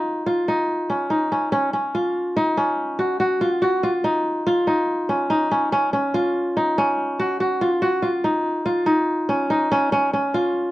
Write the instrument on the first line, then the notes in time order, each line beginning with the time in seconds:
kora
Already playing: C#4 D#4 F4
0.26 F4
0.48 D#4
0.90 C#4
1.10 D#4
1.32 C#4
1.52 C#4
1.73 C#4
1.94 F4
2.36 D#4
2.57 C#4
2.99 F#4
3.20 F#4
3.41 F4
3.62 F#4
3.83 F4
4.04 D#4
4.47 F4
4.67 D#4
5.09 C#4
5.30 D#4
5.51 C#4
5.72 C#4
5.93 C#4
6.14 F4
6.57 D#4
6.78 C#4
7.19 F#4
7.40 F#4
7.61 F4
7.82 F#4
8.02 F4
8.24 D#4
8.66 F4
8.86 D#4
9.29 C#4
9.50 D#4
9.72 C#4
9.92 C#4
10.14 C#4
10.34 F4